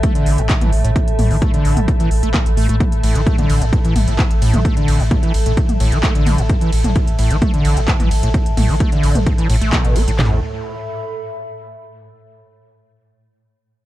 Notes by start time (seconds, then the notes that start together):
Already playing: A2 A4 E5 A5
0.03 A3, kick, closed hi-hat, mid tom
0.15 D3, closed hi-hat
0.26 A1, open hi-hat
0.38 A1 A2, closed hi-hat
0.49 A2, kick, clap, closed hi-hat
0.61 A1 E3, closed hi-hat, mid tom
0.73 A1, open hi-hat
0.84 A1 A2, closed hi-hat
0.96 A2, kick, closed hi-hat
1.08 closed hi-hat
1.19 A1 A2, open hi-hat, mid tom
1.31 A1 E3, open hi-hat
1.42 A3, kick, closed hi-hat
1.54 D3, closed hi-hat
1.65 A1, open hi-hat
1.77 A1 A2, closed hi-hat, mid tom
1.88 A2, kick, closed hi-hat
2.00 E3, closed hi-hat
2.11 A1, open hi-hat
2.23 A1 A3, closed hi-hat
2.34 A2, kick, clap, closed hi-hat, mid tom
2.46 A1, closed hi-hat
2.57 A1 A3, open hi-hat
2.69 A1 A3, closed hi-hat
2.80 A2, kick, closed hi-hat, mid tom
2.92 closed hi-hat
3.03 A1 A2, open hi-hat, ride
3.15 A1 E3, closed hi-hat
3.26 A3, kick, closed hi-hat
3.38 D3, closed hi-hat, mid tom
3.50 A1, open hi-hat, ride
3.61 A1 A2, closed hi-hat
3.73 G2, kick, closed hi-hat
3.85 E3, closed hi-hat
3.96 A1, open hi-hat, mid tom, ride
4.08 A1 A2, closed hi-hat
4.19 A2, kick, clap, closed hi-hat
4.31 A1, closed hi-hat
4.42 A1 A2, open hi-hat, ride
4.54 A1 E3, closed hi-hat, mid tom
4.65 A3, kick, closed hi-hat
4.77 D3, closed hi-hat
4.88 A1, open hi-hat, ride
5.00 A1 A2, open hi-hat
5.11 G2, kick, closed hi-hat, mid tom
5.23 E3, closed hi-hat
5.34 A1, open hi-hat, ride
5.46 A1 A2, closed hi-hat
5.57 A2, kick, closed hi-hat
5.69 closed hi-hat, mid tom
5.80 A1 A2, open hi-hat, ride
5.92 A1 E3, closed hi-hat
6.03 A3, kick, clap, closed hi-hat
6.15 A1 D3, closed hi-hat
6.26 A1, open hi-hat, mid tom, ride
6.38 A1 A2, closed hi-hat
6.49 G2, kick, closed hi-hat
6.61 E3, closed hi-hat
6.72 A1, open hi-hat, ride
6.84 A1 A2, closed hi-hat, mid tom
6.96 A2, kick, closed hi-hat
7.07 closed hi-hat
7.19 A1 A2, open hi-hat, ride
7.31 A1 E3, closed hi-hat
7.42 A3, kick, closed hi-hat, mid tom
7.54 D3, closed hi-hat
7.65 A1, open hi-hat, ride
7.77 A1 A2, closed hi-hat
7.88 G2, kick, clap, closed hi-hat
8.00 A1 E3, closed hi-hat, mid tom
8.11 A1, open hi-hat, ride
8.23 A1 A2, closed hi-hat
8.34 A2, kick, closed hi-hat
8.46 closed hi-hat
8.57 A1 A2, open hi-hat, mid tom, ride
8.69 A1 E3, open hi-hat
8.80 A3, kick, closed hi-hat
8.92 D3, closed hi-hat
9.03 A1, open hi-hat, ride
9.15 A1 A2, closed hi-hat, mid tom
9.26 G2, kick, closed hi-hat
9.38 E3, closed hi-hat
9.50 A1 A2, open hi-hat, ride
9.61 A1 A3, closed hi-hat
9.73 B2, kick, clap, closed hi-hat, mid tom
9.84 A1, closed hi-hat
9.96 A1 C4, open hi-hat, ride
10.07 A1 A2, closed hi-hat
10.19 A1 A2 A4, snare, clap, floor tom
10.26 E5
10.33 B5